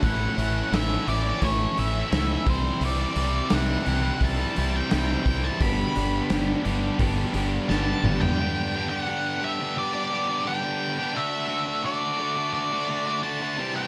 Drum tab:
HH |o-o-o-o-o-o-o-o-|o-o-o-o-o-o-o-o-|o-o-o-o-o-o-----|----------------|
SD |----o-------o---|----o-------o---|----o-------o---|----------------|
T2 |----------------|----------------|--------------o-|----------------|
FT |----------------|----------------|---------------o|----------------|
BD |o-------o-----o-|--------o-----o-|o-------o-------|----------------|

HH |----------------|
SD |----------------|
T2 |----------------|
FT |----------------|
BD |----------------|